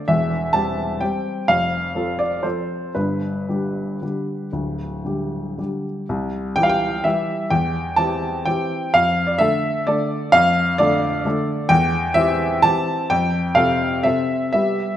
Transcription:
0.08 0.53 E1 medium
0.08 0.53 E2 medium
0.08 0.54 E5 medium
0.53 0.97 G3 soft
0.53 0.97 C4 soft
0.53 0.98 G4 medium
0.53 1.01 A5 loud
1.01 1.45 G3 soft
1.01 1.44 C4 soft
1.01 1.45 G4 soft
1.01 1.48 G5 medium
1.48 1.94 F1 medium
1.48 1.94 F2 medium
1.48 2.19 F5 loud
1.95 2.41 F3 soft
1.95 2.41 C4 soft
1.95 2.41 A4 medium
2.19 2.44 D5 medium
2.43 2.92 F3 soft
2.43 2.92 C4 soft
2.43 2.92 A4 medium
2.43 2.95 C5 medium
2.95 3.47 G1 medium
2.95 3.47 G2 medium
2.95 5.84 B4 medium
3.49 3.98 D3 soft
3.49 3.98 G3 soft
3.49 3.98 G4 soft
4.02 4.49 D3 soft
4.02 4.50 G3 soft
4.02 4.50 G4 soft
4.52 5.03 D1 soft
4.52 5.03 D2 medium
5.05 5.54 D3 soft
5.05 5.54 G3 soft
5.05 5.55 G4 soft
5.58 6.05 D3 soft
5.58 6.05 G3 soft
5.58 6.05 G4 soft
6.09 6.55 C2 medium
6.56 7.01 E3 medium
6.56 7.01 G3 medium
6.56 7.01 G4 medium
6.56 6.63 G5 loud
6.63 6.70 F5 medium
6.69 7.04 G5 loud
7.04 7.47 E3 medium
7.04 7.48 G3 medium
7.04 7.48 G4 medium
7.04 7.51 E5 medium
7.50 7.96 E2 medium
7.50 7.97 G5 loud
7.96 8.42 E3 medium
7.96 8.42 C4 medium
7.96 8.43 G4 medium
7.96 8.46 A5 loud
8.45 8.90 E3 medium
8.45 8.90 C4 medium
8.45 8.90 G4 medium
8.45 8.93 G5 loud
8.94 9.38 F2 medium
8.94 9.28 F5 loud
9.27 9.39 D5 medium
9.38 9.83 D3 medium
9.38 9.83 A3 medium
9.38 9.83 A4 medium
9.38 9.86 E5 loud
9.87 10.29 D3 medium
9.87 10.29 A3 medium
9.87 10.29 A4 medium
9.87 10.33 D5 medium
10.32 10.77 F2 medium
10.32 10.78 F5 loud
10.78 11.21 D3 medium
10.78 11.21 A3 medium
10.78 11.22 A4 medium
10.78 11.71 D5 loud
11.25 11.67 D3 medium
11.25 11.67 A3 medium
11.25 11.67 A4 medium
11.69 12.14 E2 medium
11.69 12.15 G5 loud
12.14 12.59 E3 medium
12.14 12.59 C4 medium
12.14 12.59 G4 medium
12.14 12.62 E5 loud
12.62 13.06 E3 medium
12.62 13.06 C4 medium
12.62 13.06 G4 medium
12.62 13.09 A5 loud
13.10 13.54 F2 medium
13.10 13.55 G5 loud
13.55 14.00 C3 medium
13.55 14.00 C4 medium
13.55 14.00 A4 medium
13.55 14.03 F5 loud
14.03 14.50 C3 medium
14.03 14.50 C4 medium
14.03 14.50 A4 medium
14.03 14.51 E5 loud
14.53 14.89 G3 medium
14.53 14.94 B3 soft
14.53 14.94 G4 medium
14.53 14.97 E5 loud

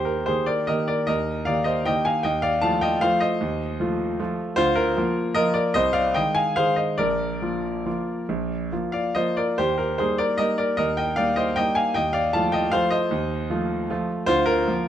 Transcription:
0.00 0.26 D#2 medium
0.00 0.06 G4 medium
0.00 0.26 C5 loud
0.05 0.26 G4 medium
0.05 0.27 A#4 medium
0.26 0.65 D#3 soft
0.26 0.65 A#3 soft
0.26 0.65 G4 medium
0.26 0.47 G#4 medium
0.26 0.47 C5 medium
0.46 0.67 A#4 medium
0.46 0.68 D5 medium
0.67 1.05 D#3 medium
0.67 1.06 A#3 medium
0.67 1.06 G4 medium
0.67 0.87 A#4 medium
0.67 0.89 D#5 loud
0.88 1.07 A#4 medium
0.88 1.08 D5 medium
1.07 1.46 D#2 medium
1.07 1.44 A#4 medium
1.07 1.46 D#5 loud
1.45 1.83 D#3 medium
1.45 1.83 A#3 soft
1.45 1.83 G4 medium
1.45 1.65 D5 medium
1.45 1.66 F5 loud
1.64 1.85 C5 medium
1.64 1.85 D#5 loud
1.85 2.21 D#3 medium
1.85 2.21 A#3 medium
1.85 2.21 G4 medium
1.85 2.04 D#5 medium
1.85 2.05 G5 loud
2.05 2.23 F5 medium
2.05 2.24 G#5 loud
2.23 2.62 D#2 medium
2.23 2.42 D#5 medium
2.23 2.43 G5 loud
2.42 2.61 D5 medium
2.42 2.62 F5 loud
2.62 2.99 F3 medium
2.62 2.99 A3 medium
2.62 2.99 F4 medium
2.62 2.81 F5 medium
2.62 2.82 A5 loud
2.81 3.01 D#5 medium
2.81 3.02 G5 loud
3.01 3.37 F3 medium
3.01 3.37 A3 medium
3.01 3.37 F4 medium
3.01 3.20 C5 medium
3.01 3.21 F5 loud
3.20 4.35 C5 medium
3.20 4.38 D#5 loud
3.41 3.78 D#2 medium
3.80 4.16 F3 medium
3.80 4.16 A3 medium
3.80 4.16 F4 medium
4.19 4.54 F3 medium
4.19 4.54 A3 medium
4.19 4.55 F4 medium
4.56 4.95 D2 medium
4.56 4.75 F4 loud
4.56 4.76 C5 loud
4.76 4.96 F4 medium
4.76 5.34 A#4 loud
4.97 5.32 F3 medium
4.97 5.33 A#3 medium
4.97 5.33 F4 medium
5.34 5.71 F3 medium
5.34 5.72 A#3 medium
5.34 5.72 F4 medium
5.34 5.54 A#4 loud
5.34 5.55 D#5 loud
5.54 5.73 A#4 medium
5.54 5.74 D5 medium
5.74 6.14 C2 medium
5.74 5.93 C5 loud
5.74 5.94 D#5 loud
5.93 6.13 D5 medium
5.93 6.14 F5 loud
6.14 6.54 D#3 medium
6.14 6.54 G#3 medium
6.14 6.54 G#4 medium
6.14 6.35 D#5 medium
6.14 6.36 G5 loud
6.35 6.54 F5 medium
6.35 6.57 G#5 loud
6.56 6.95 D#3 medium
6.56 6.96 G#3 medium
6.56 6.96 G#4 medium
6.56 6.76 C5 loud
6.56 6.78 F5 loud
6.76 6.97 C5 medium
6.76 6.98 D#5 medium
6.98 7.40 A#1 medium
6.98 8.89 A#4 medium
6.98 8.92 D5 loud
7.42 7.82 F3 soft
7.42 7.82 A#3 medium
7.42 7.82 F4 soft
7.86 8.25 F3 soft
7.86 8.25 A#3 medium
7.86 8.25 F4 medium
8.29 8.70 A#1 medium
8.72 9.13 F3 soft
8.72 9.13 A#3 soft
8.72 9.13 F4 medium
8.92 9.15 D5 medium
8.92 9.16 F5 medium
9.15 9.56 F3 soft
9.15 9.56 A#3 soft
9.15 9.56 F4 medium
9.15 9.37 C5 medium
9.15 9.38 D#5 loud
9.37 9.58 A#4 medium
9.37 9.59 D5 medium
9.58 9.99 D#2 medium
9.58 9.77 G4 medium
9.58 9.79 C5 loud
9.78 9.98 G4 medium
9.78 9.99 A#4 medium
9.98 10.36 G3 medium
9.98 10.36 A#3 soft
9.98 10.36 D#4 medium
9.98 10.18 G#4 medium
9.98 10.19 C5 medium
10.18 10.37 A#4 medium
10.18 10.39 D5 loud
10.38 10.74 G3 medium
10.38 10.75 A#3 medium
10.38 10.75 D#4 medium
10.38 10.58 A#4 medium
10.38 10.58 D#5 loud
10.58 10.77 A#4 medium
10.58 10.78 D5 medium
10.77 11.16 D#2 medium
10.77 10.96 A#4 medium
10.77 10.97 D#5 loud
10.97 11.16 D#5 medium
10.97 11.17 G5 loud
11.16 11.53 G3 soft
11.16 11.54 A#3 medium
11.16 11.54 D#4 medium
11.16 11.36 D5 medium
11.16 11.37 F5 loud
11.36 11.56 C5 medium
11.36 11.55 D#5 loud
11.56 11.92 G3 medium
11.56 11.92 A#3 medium
11.56 11.93 D#4 medium
11.56 11.75 D#5 medium
11.56 11.76 G5 loud
11.75 11.94 F5 medium
11.75 11.95 G#5 loud
11.94 12.34 D#2 medium
11.94 12.14 D#5 loud
11.94 12.14 G5 loud
12.13 12.33 D5 medium
12.13 12.33 F5 loud
12.33 12.70 F3 medium
12.33 12.70 A3 medium
12.33 12.70 F4 medium
12.33 12.52 F5 medium
12.33 12.53 A5 loud
12.52 12.72 D#5 medium
12.52 12.72 G5 loud
12.72 13.08 F3 medium
12.72 13.08 A3 medium
12.72 13.08 F4 medium
12.72 12.90 C5 loud
12.72 12.92 F5 loud
12.91 14.05 C5 medium
12.91 14.08 D#5 loud
13.11 13.49 D#2 medium
13.50 13.86 F3 medium
13.50 13.86 A3 medium
13.50 13.86 F4 medium
13.90 14.25 F3 medium
13.90 14.25 A3 medium
13.90 14.25 F4 medium
14.26 14.66 D2 medium
14.26 14.45 F4 loud
14.26 14.46 C5 loud
14.46 14.67 F4 medium
14.46 14.88 A#4 loud
14.68 14.88 F3 medium
14.68 14.88 A#3 medium
14.68 14.88 F4 medium

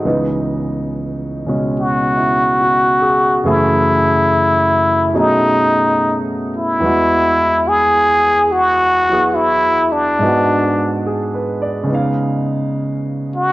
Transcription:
0.05 3.44 C#2 soft
0.05 1.45 C#3 soft
0.05 3.43 E3 soft
0.05 3.45 B3 soft
0.05 3.45 D#4 soft
1.46 3.45 B2 soft
1.46 3.43 C#3 soft
1.46 3.45 G#3 soft
1.46 3.45 C#4 soft
1.80 3.48 F#4 medium
2.17 2.77 E4 soft
2.61 3.27 F#4 soft
3.02 3.45 G#4 soft
3.44 5.12 F#2 soft
3.44 5.13 C#3 soft
3.44 5.13 E3 soft
3.44 5.13 A3 soft
3.44 5.17 E4 medium
3.44 5.13 G#4 medium
5.14 6.82 B2 soft
5.14 6.81 F#3 soft
5.14 6.82 A3 soft
5.14 6.82 C#4 soft
5.14 6.19 D#4 medium
5.14 6.82 G#4 soft
5.14 6.82 D#5 soft
6.56 7.70 E4 medium
6.80 10.18 E2 soft
6.80 10.19 E3 soft
6.80 10.19 G#3 soft
6.85 10.21 F#4 soft
7.68 8.53 G#4 medium
8.52 9.36 F#4 medium
9.09 10.20 F#3 soft
9.09 10.20 B3 soft
9.09 10.21 E4 soft
9.09 10.22 G#4 soft
9.35 9.94 E4 medium
9.92 11.04 D4 medium
10.19 11.88 G#2 soft
10.19 11.85 G#3 soft
10.19 11.87 B3 soft
10.23 11.90 D4 soft
10.23 11.91 F#4 soft
11.06 11.58 G#4 soft
11.34 11.77 B4 soft
11.62 12.05 D5 soft
11.83 13.53 C#3 soft
11.83 13.53 G#3 soft
11.89 13.53 B3 soft
11.89 13.53 D#4 soft
11.94 13.53 F5 soft
13.36 13.53 F#4 medium

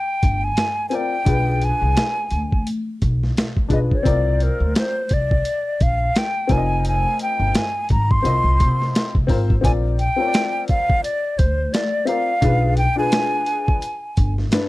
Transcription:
0.00 0.46 G5 medium
0.23 0.50 G1 medium
0.23 kick medium
0.23 closed hi-hat medium
0.44 0.87 G#5 loud
0.57 snare loud
0.57 closed hi-hat medium
0.89 1.14 C4 medium
0.89 1.15 F4 medium
0.89 0.97 G#5 medium
0.89 closed hi-hat medium
0.93 1.15 A#4 medium
0.93 1.16 D5 medium
0.93 1.66 G5 loud
1.25 1.69 B1 loud
1.25 2.12 D4 medium
1.25 2.13 F4 medium
1.25 2.14 G#4 medium
1.25 kick loud
1.25 closed hi-hat medium
1.29 2.14 B4 medium
1.62 2.67 G#5 loud
1.62 closed hi-hat medium
1.82 1.93 C2 medium
1.97 snare loud
1.97 closed hi-hat medium
2.31 2.58 D2 medium
2.31 closed hi-hat medium
2.52 kick medium
2.67 closed hi-hat medium
3.02 3.29 B1 medium
3.02 kick medium
3.02 closed hi-hat medium
3.23 snare soft
3.37 snare loud
3.37 closed hi-hat medium
3.57 kick medium
3.68 3.86 B1 medium
3.68 3.93 D4 medium
3.68 3.93 F4 medium
3.68 3.94 G#4 medium
3.68 3.95 B4 medium
3.68 kick medium
3.68 closed hi-hat medium
3.73 3.79 D#5 medium
3.91 4.45 D5 medium
3.91 kick medium
4.03 4.48 C2 medium
4.03 4.91 C4 medium
4.03 4.92 F4 medium
4.03 4.92 A#4 medium
4.03 kick loud
4.03 closed hi-hat medium
4.07 4.93 D5 medium
4.40 4.77 A#4 medium
4.40 closed hi-hat medium
4.60 4.72 D2 medium
4.75 5.15 C5 medium
4.75 snare loud
4.75 closed hi-hat medium
5.09 5.38 C2 medium
5.09 kick loud
5.09 closed hi-hat medium
5.13 5.84 D5 medium
5.31 kick medium
5.45 closed hi-hat medium
5.81 6.08 A#1 medium
5.81 6.19 F5 medium
5.81 kick medium
5.81 closed hi-hat medium
6.16 6.54 G5 medium
6.16 snare loud
6.16 closed hi-hat medium
6.47 7.04 F1 medium
6.47 7.61 C4 medium
6.47 7.62 F4 medium
6.47 7.63 A#4 medium
6.47 6.58 D5 medium
6.47 kick loud
6.47 closed hi-hat medium
6.52 6.86 G#5 medium
6.58 7.66 D#5 medium
6.85 7.19 G#5 loud
6.85 closed hi-hat medium
7.19 7.59 G5 loud
7.19 closed hi-hat medium
7.40 7.51 G1 medium
7.55 7.91 G#5 medium
7.55 snare loud
7.55 closed hi-hat medium
7.89 8.17 G#1 medium
7.89 8.13 A#5 loud
7.89 kick medium
7.89 closed hi-hat medium
8.11 9.15 C6 loud
8.11 kick medium
8.22 8.40 C2 medium
8.22 9.09 C4 medium
8.22 9.10 F4 medium
8.22 9.10 A#4 medium
8.22 9.11 D#5 medium
8.22 closed hi-hat loud
8.44 8.62 C2 medium
8.60 8.87 C3 loud
8.60 kick medium
8.60 closed hi-hat medium
8.82 snare soft
8.95 snare loud
8.95 closed hi-hat medium
9.15 9.26 C2 medium
9.15 kick medium
9.27 9.56 G#1 medium
9.27 9.51 C4 medium
9.27 9.52 F4 medium
9.27 9.52 A#4 medium
9.27 9.53 C5 medium
9.27 kick medium
9.27 open hi-hat soft
9.50 kick medium
9.61 10.06 A#1 medium
9.61 9.94 C4 medium
9.61 9.95 F4 medium
9.61 9.96 A#4 medium
9.61 9.96 D5 medium
9.61 9.72 G#5 loud
9.61 kick loud
9.61 closed hi-hat medium
9.99 10.65 G5 loud
9.99 closed hi-hat medium
10.16 11.00 C4 medium
10.16 11.00 F4 medium
10.16 11.01 A#4 medium
10.20 10.25 C#5 medium
10.27 11.05 D5 medium
10.34 snare loud
10.34 closed hi-hat loud
10.68 11.01 F5 medium
10.68 kick medium
10.68 closed hi-hat medium
10.90 kick medium
11.04 11.40 D5 loud
11.04 closed hi-hat loud
11.38 11.66 D2 medium
11.38 11.75 C5 medium
11.38 kick medium
11.38 closed hi-hat medium
11.73 12.08 D5 medium
11.73 snare loud
11.73 closed hi-hat loud
12.05 12.30 C4 medium
12.05 12.31 F4 medium
12.05 12.31 A#4 medium
12.05 12.77 F5 loud
12.05 closed hi-hat medium
12.09 12.32 D5 medium
12.41 12.85 B1 loud
12.41 12.74 D4 medium
12.41 12.75 F4 medium
12.41 12.75 G#4 medium
12.41 12.76 B4 medium
12.41 kick loud
12.41 closed hi-hat medium
12.77 12.96 G5 loud
12.77 closed hi-hat medium
12.96 13.79 D4 medium
12.96 13.79 F4 medium
12.96 13.80 G#4 medium
12.96 13.81 B4 medium
12.96 14.34 G#5 loud
13.12 snare loud
13.12 closed hi-hat loud
13.46 closed hi-hat medium
13.68 kick medium
13.82 closed hi-hat loud
14.17 14.44 G1 medium
14.17 kick medium
14.17 closed hi-hat medium
14.38 snare soft
14.52 14.69 D4 medium
14.52 14.69 B4 medium
14.52 snare loud
14.52 closed hi-hat loud

